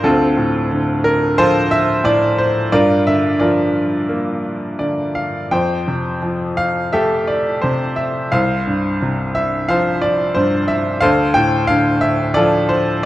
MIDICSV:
0, 0, Header, 1, 2, 480
1, 0, Start_track
1, 0, Tempo, 676437
1, 26, Time_signature, 4, 2, 24, 8
1, 2906, Tempo, 710900
1, 4826, Tempo, 695249
1, 6266, Tempo, 669643
1, 9154, End_track
2, 0, Start_track
2, 0, Title_t, "Grand piano"
2, 0, Program_c, 0, 0
2, 0, Control_c, 0, 64, 127
2, 24, Note_on_c, 0, 38, 66
2, 28, Note_on_c, 0, 69, 87
2, 32, Note_on_c, 0, 60, 65
2, 34, Note_on_c, 0, 65, 63
2, 37, Control_c, 0, 64, 0
2, 141, Control_c, 0, 64, 127
2, 265, Note_on_c, 0, 45, 47
2, 478, Note_off_c, 0, 69, 0
2, 504, Note_on_c, 0, 50, 50
2, 740, Note_on_c, 0, 70, 86
2, 955, Note_off_c, 0, 60, 0
2, 956, Note_off_c, 0, 65, 0
2, 980, Note_on_c, 0, 72, 111
2, 981, Note_on_c, 0, 53, 59
2, 986, Note_off_c, 0, 70, 0
2, 986, Note_on_c, 0, 65, 74
2, 987, Note_on_c, 0, 69, 68
2, 1187, Note_off_c, 0, 45, 0
2, 1215, Note_on_c, 0, 76, 98
2, 1222, Note_off_c, 0, 72, 0
2, 1421, Note_off_c, 0, 50, 0
2, 1448, Note_on_c, 0, 45, 57
2, 1453, Note_on_c, 0, 74, 97
2, 1456, Note_off_c, 0, 76, 0
2, 1691, Note_on_c, 0, 72, 82
2, 1696, Note_off_c, 0, 74, 0
2, 1901, Note_off_c, 0, 38, 0
2, 1902, Note_off_c, 0, 53, 0
2, 1904, Note_off_c, 0, 65, 0
2, 1905, Note_off_c, 0, 69, 0
2, 1915, Note_off_c, 0, 45, 0
2, 1932, Note_on_c, 0, 74, 95
2, 1933, Note_on_c, 0, 43, 69
2, 1938, Note_on_c, 0, 65, 73
2, 1939, Note_off_c, 0, 72, 0
2, 1940, Control_c, 0, 64, 0
2, 1940, Note_on_c, 0, 70, 71
2, 2078, Control_c, 0, 64, 127
2, 2176, Note_on_c, 0, 76, 91
2, 2181, Note_on_c, 0, 50, 46
2, 2183, Note_off_c, 0, 74, 0
2, 2408, Note_off_c, 0, 65, 0
2, 2408, Note_off_c, 0, 70, 0
2, 2409, Note_on_c, 0, 74, 66
2, 2419, Note_on_c, 0, 53, 50
2, 2419, Note_on_c, 0, 65, 52
2, 2419, Note_on_c, 0, 70, 48
2, 2426, Note_off_c, 0, 76, 0
2, 2872, Note_off_c, 0, 74, 0
2, 2904, Note_on_c, 0, 58, 48
2, 3117, Note_off_c, 0, 50, 0
2, 3357, Note_off_c, 0, 53, 0
2, 3357, Note_off_c, 0, 65, 0
2, 3357, Note_off_c, 0, 70, 0
2, 3375, Note_on_c, 0, 74, 58
2, 3382, Note_on_c, 0, 50, 39
2, 3618, Note_on_c, 0, 77, 70
2, 3630, Note_off_c, 0, 74, 0
2, 3840, Note_off_c, 0, 58, 0
2, 3842, Note_off_c, 0, 43, 0
2, 3853, Note_off_c, 0, 50, 0
2, 3864, Note_on_c, 0, 41, 59
2, 3864, Note_on_c, 0, 79, 80
2, 3870, Note_on_c, 0, 72, 60
2, 3871, Note_off_c, 0, 77, 0
2, 3877, Control_c, 0, 64, 0
2, 4010, Control_c, 0, 64, 127
2, 4108, Note_on_c, 0, 48, 42
2, 4317, Note_off_c, 0, 79, 0
2, 4344, Note_on_c, 0, 53, 46
2, 4577, Note_on_c, 0, 77, 92
2, 4799, Note_off_c, 0, 72, 0
2, 4817, Note_on_c, 0, 76, 84
2, 4821, Note_on_c, 0, 67, 68
2, 4822, Note_on_c, 0, 57, 52
2, 4822, Note_on_c, 0, 69, 71
2, 4828, Note_off_c, 0, 77, 0
2, 5041, Note_off_c, 0, 48, 0
2, 5058, Note_on_c, 0, 74, 69
2, 5072, Note_off_c, 0, 76, 0
2, 5279, Note_off_c, 0, 53, 0
2, 5293, Note_on_c, 0, 72, 72
2, 5306, Note_on_c, 0, 48, 53
2, 5310, Note_off_c, 0, 74, 0
2, 5522, Note_off_c, 0, 72, 0
2, 5532, Note_on_c, 0, 76, 73
2, 5756, Note_off_c, 0, 41, 0
2, 5756, Note_off_c, 0, 67, 0
2, 5757, Note_off_c, 0, 57, 0
2, 5757, Note_off_c, 0, 69, 0
2, 5771, Note_off_c, 0, 48, 0
2, 5777, Note_on_c, 0, 77, 88
2, 5779, Note_on_c, 0, 36, 66
2, 5786, Note_off_c, 0, 76, 0
2, 5788, Note_on_c, 0, 72, 60
2, 5794, Control_c, 0, 64, 0
2, 5934, Control_c, 0, 64, 127
2, 6023, Note_on_c, 0, 43, 42
2, 6232, Note_off_c, 0, 77, 0
2, 6265, Note_on_c, 0, 48, 49
2, 6498, Note_on_c, 0, 76, 86
2, 6721, Note_off_c, 0, 72, 0
2, 6726, Note_off_c, 0, 76, 0
2, 6740, Note_on_c, 0, 77, 91
2, 6746, Note_on_c, 0, 53, 57
2, 6752, Note_on_c, 0, 72, 69
2, 6956, Note_off_c, 0, 43, 0
2, 6964, Note_off_c, 0, 77, 0
2, 6976, Note_on_c, 0, 74, 80
2, 7195, Note_off_c, 0, 48, 0
2, 7202, Note_off_c, 0, 72, 0
2, 7212, Note_on_c, 0, 72, 82
2, 7225, Note_on_c, 0, 43, 57
2, 7226, Note_off_c, 0, 74, 0
2, 7450, Note_on_c, 0, 76, 84
2, 7463, Note_off_c, 0, 72, 0
2, 7667, Note_off_c, 0, 36, 0
2, 7670, Note_off_c, 0, 53, 0
2, 7686, Note_off_c, 0, 43, 0
2, 7686, Note_on_c, 0, 77, 106
2, 7696, Note_on_c, 0, 72, 77
2, 7697, Note_on_c, 0, 69, 73
2, 7701, Note_off_c, 0, 76, 0
2, 7703, Note_on_c, 0, 38, 68
2, 7709, Control_c, 0, 64, 0
2, 7849, Control_c, 0, 64, 127
2, 7926, Note_on_c, 0, 79, 104
2, 7938, Note_off_c, 0, 77, 0
2, 7942, Note_on_c, 0, 45, 47
2, 8165, Note_on_c, 0, 77, 97
2, 8176, Note_off_c, 0, 79, 0
2, 8183, Note_on_c, 0, 50, 54
2, 8406, Note_on_c, 0, 76, 94
2, 8416, Note_off_c, 0, 77, 0
2, 8626, Note_off_c, 0, 69, 0
2, 8626, Note_off_c, 0, 72, 0
2, 8644, Note_on_c, 0, 74, 99
2, 8657, Note_on_c, 0, 69, 75
2, 8659, Note_on_c, 0, 65, 67
2, 8660, Note_off_c, 0, 76, 0
2, 8663, Note_on_c, 0, 53, 63
2, 8874, Note_off_c, 0, 45, 0
2, 8892, Note_on_c, 0, 72, 77
2, 8902, Note_off_c, 0, 74, 0
2, 9120, Note_off_c, 0, 50, 0
2, 9123, Note_off_c, 0, 72, 0
2, 9154, Note_off_c, 0, 38, 0
2, 9154, Note_off_c, 0, 53, 0
2, 9154, Note_off_c, 0, 65, 0
2, 9154, Note_off_c, 0, 69, 0
2, 9154, End_track
0, 0, End_of_file